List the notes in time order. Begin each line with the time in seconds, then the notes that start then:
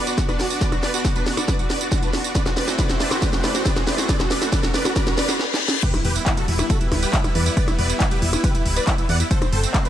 Already playing: B1 B3 D4 F#4 D5, riser
0.07 F#4, closed hi-hat, tambourine
0.18 F#4, kick, snare, closed hi-hat, tambourine
0.29 D4 B4, closed hi-hat, tambourine, percussion blips
0.39 B1 F#4, snare, open hi-hat
0.50 F#4, tambourine
0.61 B4 D5, kick, snare, closed hi-hat, tambourine
0.72 F#4, closed hi-hat, tambourine, percussion blips
0.83 B1 B4 D5, snare, open hi-hat
0.94 F#4, closed hi-hat, tambourine
1.05 F#4, kick, snare, closed hi-hat, tambourine
1.16 D4 B4, closed hi-hat, tambourine
1.26 B1 F#4, snare, open hi-hat
1.37 F#4, closed hi-hat, tambourine, percussion blips
1.48 B4 D5, kick, snare, closed hi-hat, tambourine
1.59 F#4, closed hi-hat, tambourine
1.70 B1 B4 D5, snare, open hi-hat
1.81 F#4, closed hi-hat, tambourine
1.92 F#4, kick, snare, closed hi-hat, tambourine
2.03 D4 B4, closed hi-hat, tambourine
2.13 B1 F#4, snare, open hi-hat
2.24 F#4, tambourine
2.35 A3 C4 E4 B4 C5 D5, kick, snare, closed hi-hat, tambourine
2.46 F#4, snare, closed hi-hat, tambourine, percussion blips
2.57 A1 B4 D5, snare, open hi-hat
2.68 F#4, snare, closed hi-hat, tambourine
2.79 B4 D5, kick, snare, closed hi-hat, tambourine
2.90 F#4, snare, closed hi-hat, tambourine
3.00 A1 B4 D5, snare, open hi-hat
3.11 F#4, snare, tambourine, percussion blips
3.22 B4 D5, kick, snare, closed hi-hat, tambourine
3.33 F#4, snare, closed hi-hat, tambourine
3.44 B4 D5, snare, open hi-hat, percussion blips
3.55 F#4, snare, closed hi-hat, tambourine
3.66 B4 D5, kick, snare, closed hi-hat, tambourine
3.76 F#4, snare, closed hi-hat, tambourine, percussion blips
3.87 A1 B4 D5, snare, open hi-hat
3.98 F#4, snare, tambourine
4.09 B4 D5, kick, snare, closed hi-hat, tambourine
4.20 F#4, snare, closed hi-hat, tambourine, percussion blips
4.31 A1 B4 D5, snare, open hi-hat
4.42 F#4, snare, closed hi-hat, tambourine
4.53 B4 D5, kick, snare, closed hi-hat, tambourine
4.63 F#4, snare, closed hi-hat, tambourine
4.74 A1 B4 D5, snare, open hi-hat
4.85 F#4, snare, closed hi-hat, tambourine, percussion blips
4.96 B4 D5, kick, snare, closed hi-hat, tambourine, reverse cymbal
5.07 F#4, snare, closed hi-hat, tambourine
5.18 A1 B4 D5, snare, open hi-hat
5.29 F#4, snare, closed hi-hat, tambourine
5.39 snare
5.54 snare
5.68 snare
5.83 G3 B3 E4 G4 B4, kick, closed hi-hat, crash, ride, tambourine, impact
5.94 E4, closed hi-hat, tambourine, percussion blips
6.05 E1 G4 B4, open hi-hat, ride
6.16 E4, closed hi-hat, tambourine
6.26 E4, kick, clap, closed hi-hat, ride, tambourine
6.37 F#4 A4, closed hi-hat, tambourine
6.48 E1 E4, open hi-hat, ride
6.59 E4, closed hi-hat, tambourine, percussion blips
6.70 F#4 A4, kick, closed hi-hat, ride, tambourine
6.81 E4, closed hi-hat, tambourine
6.92 D1 E4, open hi-hat, ride, percussion blips
7.03 G4 B4, closed hi-hat, tambourine
7.13 E4, kick, clap, closed hi-hat, ride, tambourine
7.24 E4, closed hi-hat, tambourine, percussion blips
7.35 E2 B4 D5, open hi-hat, ride
7.46 E4, closed hi-hat, tambourine
7.57 B4 D5, kick, closed hi-hat, ride, tambourine
7.68 E4, closed hi-hat, tambourine, percussion blips
7.79 E1 B4 D5, open hi-hat, ride
7.89 E4, closed hi-hat, tambourine
8.00 E4, kick, clap, closed hi-hat, ride, tambourine
8.11 G4 B4, closed hi-hat, tambourine
8.22 E1 E4, open hi-hat, ride
8.33 E4, closed hi-hat, tambourine, percussion blips
8.44 G4 B4, kick, closed hi-hat, ride, tambourine
8.55 E4, closed hi-hat, tambourine
8.66 D1 E4, open hi-hat, ride
8.76 B4 D5, closed hi-hat, tambourine
8.87 E4, kick, clap, closed hi-hat, ride, tambourine
8.98 E4, closed hi-hat, tambourine
9.09 E2 D5 F#5, open hi-hat, ride
9.20 E4, closed hi-hat, tambourine
9.31 A3 C4 F#4 A4 C5, kick, closed hi-hat, ride, tambourine
9.42 C4, closed hi-hat, tambourine, percussion blips
9.53 F#1 A4 C5, open hi-hat, ride
9.63 C4, closed hi-hat, tambourine
9.74 C4, kick, clap, closed hi-hat, ride, tambourine
9.85 D4 B4, closed hi-hat, tambourine